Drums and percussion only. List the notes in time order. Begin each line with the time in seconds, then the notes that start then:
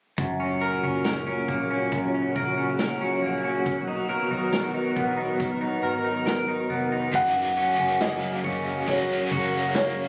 0.18 kick, closed hi-hat
1.04 snare, closed hi-hat
1.48 kick
1.92 kick, closed hi-hat
2.36 kick
2.79 snare, closed hi-hat
3.66 kick, closed hi-hat
4.53 snare, closed hi-hat
4.97 kick
5.40 kick, closed hi-hat
6.26 snare, closed hi-hat
7.14 kick, closed hi-hat
8.00 snare, closed hi-hat
8.44 kick
8.88 kick, closed hi-hat
9.32 kick
9.75 snare, closed hi-hat